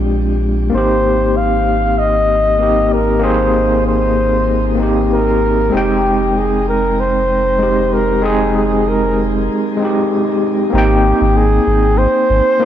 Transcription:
Already playing: sub bass A#1, tine electric piano G#3 C4 D4 G4
0.70 sub bass G#1, tine electric piano A#3 C4
0.75 tine electric piano D#4 G4, flugelhorn C5
1.37 flugelhorn F5
1.99 flugelhorn D#5
2.59 tine electric piano A#3 C4 D#4 G4
2.93 flugelhorn A#4
3.20 tine electric piano A#3 C4 D#4 G#4
3.24 flugelhorn C5
3.87 flugelhorn C5
4.75 tine electric piano A#3 C4
4.80 tine electric piano D#4 G4
5.13 flugelhorn A#4
5.69 tine electric piano G#3 C4
5.74 sub bass F1, tine electric piano D#4 G5, flugelhorn G4
6.38 flugelhorn G#4
6.69 flugelhorn A#4
7.00 flugelhorn C5
7.59 tine electric piano G#3 C4 D#4
7.63 tine electric piano G4
7.94 flugelhorn A#4
8.22 tine electric piano G#3 C4 D#4 G#4
8.26 flugelhorn G#4
8.57 flugelhorn G#4
8.89 flugelhorn A#4
9.77 tine electric piano G#3 C4
9.82 tine electric piano D#4 G4
10.70 sub bass G#1, tine electric piano A#3 C4
10.74 tine electric piano D#4 G5, flugelhorn G4
11.21 sub bass G#1
11.37 flugelhorn G#4
11.67 sub bass G#1
11.98 flugelhorn C5
12.30 sub bass G#1
12.60 tine electric piano A#3 C4

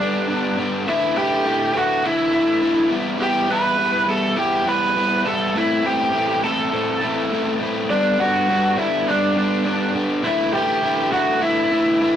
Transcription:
Already playing: lead electric guitar D4 D5
0.00 overdriven electric guitar G2 D3 G3 B3 D4
0.28 overdriven electric guitar G2 D3 G3 B3 D4
0.57 overdriven electric guitar G2 D3 G3 B3 D4
0.87 overdriven electric guitar D3 E3 A3 E4, lead electric guitar E4 E5
1.16 overdriven electric guitar D3 E3 A3 E4, lead electric guitar G4 G5
1.45 overdriven electric guitar D3 E3 A3 E4
1.74 overdriven electric guitar D3 E3 A3 E4, lead electric guitar F#4
1.78 lead electric guitar F#5
2.04 overdriven electric guitar D3 E3 A3 E4, lead electric guitar E4 E5
2.33 overdriven electric guitar D3 E3 A3 E4
2.62 overdriven electric guitar D3 E3 A3 E4
2.90 overdriven electric guitar E3 G3 B3 E4
3.18 overdriven electric guitar E3 G3 B3 E4, lead electric guitar G4
3.23 lead electric guitar G5
3.48 overdriven electric guitar E3 G3 B3 E4, lead electric guitar B4
3.53 lead electric guitar B5
3.77 overdriven electric guitar E3 G3 B3 E4
4.07 overdriven electric guitar E3 G3 B3 E4, lead electric guitar A4
4.11 lead electric guitar A5
4.36 overdriven electric guitar E3 G3 B3 E4, lead electric guitar G4 G5
4.66 overdriven electric guitar E3 G3 B3 E4, lead electric guitar B4 B5
4.96 overdriven electric guitar E3 G3 B3 E4
5.25 overdriven electric guitar E3 G3 B3 E4, lead electric guitar A4 A5
5.54 overdriven electric guitar A2 E3 A3 C4 E4, lead electric guitar E4 E5
5.84 overdriven electric guitar A2 E3 A3 C4 E4, lead electric guitar G4 G5
6.12 overdriven electric guitar A2 E3 A3 C4 E4
6.42 overdriven electric guitar A2 E3 A3 C4 E4, lead electric guitar A4 A5
6.72 overdriven electric guitar A2 E3 A3 C4 E4
7.01 overdriven electric guitar A2 E3 A3 C4 E4
7.31 overdriven electric guitar A2 E3 A3 C4 E4
7.61 overdriven electric guitar A2 E3 A3 C4 E4
7.90 overdriven electric guitar G2 D3 G3 B3 D4, lead electric guitar D4 D5
8.19 overdriven electric guitar G2 D3 G3 B3 D4, lead electric guitar F#4 F#5
8.48 overdriven electric guitar G2 D3 G3 B3 D4
8.78 overdriven electric guitar G2 D3 G3 B3 D4, lead electric guitar E4 E5
9.07 overdriven electric guitar G2 D3 G3 B3 D4, lead electric guitar D4 D5
9.35 overdriven electric guitar G2 D3 G3 B3 D4
9.65 overdriven electric guitar G2 D3 G3 B3 D4
9.93 overdriven electric guitar G2 D3 G3 B3 D4
10.23 overdriven electric guitar D3 E3 A3 E4, lead electric guitar E4
10.28 lead electric guitar E5
10.53 overdriven electric guitar D3 E3 A3 E4, lead electric guitar G4 G5
10.83 overdriven electric guitar D3 E3 A3 E4
11.12 overdriven electric guitar D3 E3 A3 E4, lead electric guitar F#4 F#5
11.41 overdriven electric guitar D3 E3 A3 E4, lead electric guitar E4 E5
11.71 overdriven electric guitar D3 E3 A3 E4
12.01 overdriven electric guitar D3 E3 A3 E4

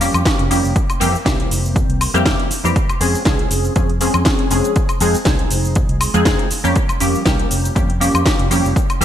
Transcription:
0.00 analog polysynth F3 G3 A#3 C#4 G4, open hi-hat, shaker
0.14 fingered electric bass F2, high woodblock, shaker
0.25 analog polysynth F3 G3 A#3 C#4 G4, kick, snare, closed hi-hat, shaker
0.39 fingered electric bass F1, closed hi-hat
0.50 fingered electric bass F2, analog polysynth F3 G3 A#3 C#4 G4, open hi-hat, shaker
0.64 fingered electric bass F1, shaker
0.76 kick, closed hi-hat, shaker
0.90 closed hi-hat, high woodblock, shaker
1.00 fingered electric bass F2, analog polysynth E3 G3 A#3 C4 G4, open hi-hat, shaker
1.14 muted fingered electric bass stroke, shaker
1.25 fingered electric bass C2, analog polysynth E3 G3 A#3 C4 G4, kick, snare, closed hi-hat, shaker
1.40 closed hi-hat
1.51 fingered electric bass F1, open hi-hat, shaker
1.65 shaker
1.76 kick, closed hi-hat, shaker
1.89 fingered electric bass C2, closed hi-hat
2.01 open hi-hat, high woodblock, shaker
2.14 fingered electric bass F2, analog polysynth E3 G3 A#3 C4 G4, closed hi-hat, shaker
2.25 fingered electric bass F1, analog polysynth E3 G3 A#3 C4 G4, kick, snare, closed hi-hat, shaker
2.40 closed hi-hat
2.51 muted fingered electric bass stroke, open hi-hat, shaker
2.64 fingered electric bass F2, analog polysynth E3 G3 A#3 C4 G4, shaker
2.76 kick, closed hi-hat, shaker
2.89 muted fingered electric bass stroke, closed hi-hat, high woodblock, shaker
3.00 fingered electric bass F2, analog polysynth F3 G#3 C4 C#4 G#4, open hi-hat, shaker
3.14 muted fingered electric bass stroke, shaker
3.25 fingered electric bass C2, analog polysynth F3 G#3 C4 C#4 G#4, kick, snare, closed hi-hat, shaker
3.39 closed hi-hat
3.51 fingered electric bass F1, open hi-hat, shaker
3.65 shaker
3.76 fingered electric bass F2, analog polysynth F3 G#3 C4 C#4 G#4, kick, closed hi-hat, shaker
3.90 closed hi-hat
4.00 analog polysynth F3 G#3 C4 C#4 G#4, open hi-hat, shaker
4.14 fingered electric bass F2, high woodblock, shaker
4.25 analog polysynth F3 G#3 C4 C#4 G#4, kick, snare, closed hi-hat, shaker
4.39 closed hi-hat
4.51 fingered electric bass F1, analog polysynth F3 G#3 C4 C#4 G#4, open hi-hat, shaker
4.64 closed hi-hat, shaker
4.76 kick, closed hi-hat, shaker
4.89 closed hi-hat, high woodblock, shaker
5.00 fingered electric bass F2, analog polysynth F3 G#3 C4 D#4 G#4, open hi-hat, shaker
5.14 muted fingered electric bass stroke, shaker
5.25 fingered electric bass C2, analog polysynth F3 G#3 C4 D#4 G#4, kick, snare, closed hi-hat, shaker
5.39 closed hi-hat
5.51 fingered electric bass F1, open hi-hat, shaker
5.65 shaker
5.75 kick, closed hi-hat, shaker
5.89 fingered electric bass C2, closed hi-hat
6.01 open hi-hat, high woodblock, shaker
6.14 fingered electric bass F2, analog polysynth F3 G#3 C4 D#4 G#4, closed hi-hat, shaker
6.25 fingered electric bass F1, analog polysynth F3 G#3 C4 D#4 G#4, kick, snare, closed hi-hat, shaker
6.39 closed hi-hat
6.51 muted fingered electric bass stroke, open hi-hat, shaker
6.64 fingered electric bass F2, analog polysynth F3 G3 A#3 C#4 G4, shaker
6.76 kick, closed hi-hat, shaker
6.89 muted fingered electric bass stroke, closed hi-hat, high woodblock, shaker
7.00 fingered electric bass F2, analog polysynth F3 G3 A#3 C#4 G4, open hi-hat, shaker
7.14 muted fingered electric bass stroke, shaker
7.25 fingered electric bass C2, analog polysynth F3 G3 A#3 C#4 G4, kick, snare, closed hi-hat, shaker
7.39 closed hi-hat
7.51 fingered electric bass F1, open hi-hat, shaker
7.65 shaker
7.75 fingered electric bass F2, analog polysynth F3 G3 A#3 C#4 G4, kick, closed hi-hat, shaker
7.90 closed hi-hat
8.00 analog polysynth F3 G3 A#3 C#4 G4, open hi-hat, shaker
8.14 fingered electric bass F2, closed hi-hat, high woodblock, shaker
8.25 analog polysynth F3 G3 A#3 C#4 G4, kick, snare, closed hi-hat, shaker
8.39 fingered electric bass F1, closed hi-hat
8.50 fingered electric bass F2, analog polysynth F3 G3 A#3 C#4 G4, open hi-hat, shaker
8.64 fingered electric bass F1, shaker
8.76 kick, closed hi-hat, shaker
8.90 closed hi-hat, high woodblock, shaker
9.01 fingered electric bass F2, analog polysynth E3 G3 A#3 C4 G4, open hi-hat

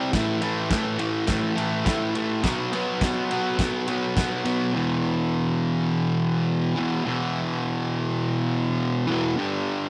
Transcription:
Already playing: distorted electric guitar C3 G3 C4
0.12 distorted electric guitar A2 E3 A3, kick, snare, ride
0.42 distorted electric guitar A2 E3 A3, ride
0.70 distorted electric guitar A2 E3 A3, kick, snare, ride
0.99 distorted electric guitar A2 E3 A3, ride
1.27 distorted electric guitar A2 E3 A3, kick, snare, ride
1.56 distorted electric guitar A2 E3 A3, ride
1.85 distorted electric guitar A2 E3 A3, kick, snare, ride
2.15 distorted electric guitar A2 E3 A3, ride
2.42 distorted electric guitar B2 F#3 B3, kick, snare, ride
2.73 distorted electric guitar B2 F#3 B3, ride
3.01 distorted electric guitar B2 F#3 B3, kick, snare, ride
3.30 distorted electric guitar B2 F#3 B3, ride
3.58 distorted electric guitar B2 F#3 B3, kick, snare, ride
3.87 distorted electric guitar B2 F#3 B3, ride
4.16 distorted electric guitar B2 F#3 B3, kick, snare, ride
4.45 distorted electric guitar B2 F#3 B3, ride
4.73 distorted electric guitar E2 B2
4.77 distorted electric guitar E3
6.76 distorted electric guitar B2 E3
6.80 distorted electric guitar E2
7.04 distorted electric guitar E2 B2
7.09 distorted electric guitar E3
9.07 distorted electric guitar B2 E3
9.12 distorted electric guitar E2
9.36 distorted electric guitar G2 D3
9.40 distorted electric guitar G3

